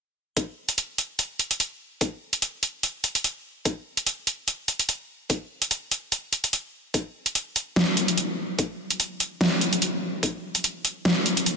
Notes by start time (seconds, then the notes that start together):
0.37 kick, closed hi-hat
0.69 closed hi-hat
0.78 closed hi-hat
0.98 closed hi-hat
1.19 closed hi-hat
1.39 closed hi-hat
1.51 closed hi-hat
1.60 closed hi-hat
2.01 kick, closed hi-hat
2.33 closed hi-hat
2.42 closed hi-hat
2.63 closed hi-hat
2.83 closed hi-hat
3.04 closed hi-hat
3.15 closed hi-hat
3.24 closed hi-hat
3.65 kick, closed hi-hat
3.97 closed hi-hat
4.07 closed hi-hat
4.27 closed hi-hat
4.48 closed hi-hat
4.68 closed hi-hat
4.79 closed hi-hat
4.89 closed hi-hat
5.30 kick, closed hi-hat
5.62 closed hi-hat
5.71 closed hi-hat
5.91 closed hi-hat
6.12 closed hi-hat
6.33 closed hi-hat
6.44 closed hi-hat
6.53 closed hi-hat
6.94 kick, closed hi-hat
7.26 closed hi-hat
7.35 closed hi-hat
7.56 closed hi-hat
7.76 snare, closed hi-hat
7.97 closed hi-hat
8.08 closed hi-hat
8.17 closed hi-hat
8.59 kick, closed hi-hat
8.90 closed hi-hat
9.00 closed hi-hat
9.20 closed hi-hat
9.41 snare, closed hi-hat
9.61 closed hi-hat
9.73 closed hi-hat
9.82 closed hi-hat
10.23 kick, closed hi-hat
10.55 closed hi-hat
10.64 closed hi-hat
10.85 closed hi-hat
11.05 snare, closed hi-hat
11.26 closed hi-hat
11.37 closed hi-hat
11.46 closed hi-hat